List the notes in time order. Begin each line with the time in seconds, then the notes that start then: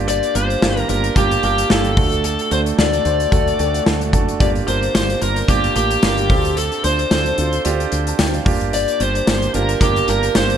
Already playing: G1 A#3 D4 F4 G4
0.08 D5, closed hi-hat
0.23 closed hi-hat
0.34 G1 A#3 D4 F4 G4 C5, closed hi-hat
0.50 closed hi-hat
0.61 G1 A#3 D4 F4 G4, snare
0.77 closed hi-hat
0.88 G1 A#3 D4 F4 G4 A#4, closed hi-hat
1.04 closed hi-hat
1.16 G1 A#3 D4 F4 G4, kick, closed hi-hat
1.31 closed hi-hat
1.43 G1 A#3 D4 F4 G4 A#4, closed hi-hat
1.58 closed hi-hat
1.70 G1 A#3 D4 F4 G4 A4, snare
1.85 closed hi-hat
1.97 D2 A3 D4 F#4 A4, kick, open hi-hat
2.12 closed hi-hat
2.24 A4, closed hi-hat
2.39 closed hi-hat
2.51 D2 A3 D4 F#4 A4 C5, closed hi-hat
2.66 closed hi-hat
2.78 D2 A3 D4 F#4 A4 D5, snare
2.93 closed hi-hat
3.05 D2 A3 D4 F#4 C5, closed hi-hat
3.20 closed hi-hat
3.31 D2 A3 D4 F#4 A4, kick, closed hi-hat
3.48 closed hi-hat
3.59 D2 A3 D4 F#4 A4 G5, closed hi-hat
3.74 F#5, closed hi-hat
3.86 D2 A3 D4 F#4 A4 A5, snare
4.01 closed hi-hat
4.13 F#1 A3 D4 F#4 A4 A5, kick, closed hi-hat
4.28 closed hi-hat
4.39 G1 A#3 D4 F4 G4 D5, kick, closed hi-hat
4.55 closed hi-hat
4.67 G1 A#3 D4 F4 A#4 C5, closed hi-hat
4.83 closed hi-hat
4.94 G1 A#3 D4 F4 G4 C5, snare, tambourine
5.10 closed hi-hat
5.21 G1 A#3 D4 F4 A#4, closed hi-hat
5.36 closed hi-hat
5.48 G1 A#3 D4 F4 G4, kick, closed hi-hat
5.64 closed hi-hat
5.75 A1 A#3 D4 F4 G4, closed hi-hat
5.91 closed hi-hat
6.02 G1 A#3 D4 F4 A#4, snare, tambourine
6.18 closed hi-hat
6.29 D2 C4 D4 F4 A4, kick, open hi-hat
6.45 closed hi-hat
6.57 A4, closed hi-hat
6.72 closed hi-hat
6.83 D2 C4 D4 F4 C5, closed hi-hat
6.99 closed hi-hat
7.10 D2 C4 D4 F4 A4 C5, snare, tambourine
7.26 closed hi-hat
7.38 D2 C4 D4 F4 A4, closed hi-hat
7.53 closed hi-hat
7.64 D2 C4 D4 F4 G4, closed hi-hat
7.80 closed hi-hat
7.92 D2, closed hi-hat
8.07 F5 A5, closed hi-hat
8.19 D2 G5, snare, tambourine
8.34 D5 F5, closed hi-hat
8.45 G1 A#3 D4 F4 G4, kick, open hi-hat
8.61 closed hi-hat
8.73 D5, closed hi-hat
8.88 closed hi-hat
8.99 G1 A#3 D4 F4 G4 C5, closed hi-hat
9.15 closed hi-hat
9.26 G1 A#3 D4 F4 G4, snare, tambourine
9.42 closed hi-hat
9.54 G1 A#3 D4 F4 G4 A#4, closed hi-hat
9.69 closed hi-hat
9.80 G1 A#3 D4 F4 G4 A#4, kick, closed hi-hat
9.96 closed hi-hat
10.08 G1 A#3 D4 F4 G4 A#4, closed hi-hat
10.23 closed hi-hat
10.34 G1 A#3 D4 F4 G4 C5, snare, tambourine
10.50 closed hi-hat